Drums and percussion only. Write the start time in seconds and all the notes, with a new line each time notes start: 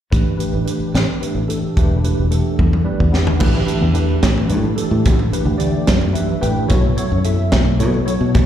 0.12 kick, closed hi-hat
0.40 closed hi-hat
0.67 closed hi-hat
0.95 snare, closed hi-hat
1.23 closed hi-hat
1.50 closed hi-hat
1.77 kick, closed hi-hat
2.04 closed hi-hat
2.31 closed hi-hat
2.59 kick, high tom
2.73 high tom
3.00 kick
3.14 snare
3.27 floor tom
3.40 kick, crash, high conga
3.55 low conga
3.68 closed hi-hat
3.95 closed hi-hat
4.23 kick, snare, closed hi-hat, high conga
4.38 low conga
4.49 closed hi-hat
4.65 low conga
4.78 closed hi-hat
5.05 kick, closed hi-hat, high conga
5.19 low conga
5.33 closed hi-hat
5.60 closed hi-hat, low conga
5.87 kick, snare, closed hi-hat, high conga
6.01 low conga
6.15 closed hi-hat
6.29 low conga
6.43 closed hi-hat
6.69 kick, closed hi-hat, high conga
6.97 closed hi-hat
7.24 closed hi-hat, low conga
7.52 kick, snare, closed hi-hat, high conga
7.80 closed hi-hat
7.94 low conga
8.08 closed hi-hat
8.35 kick, closed hi-hat, high conga, low conga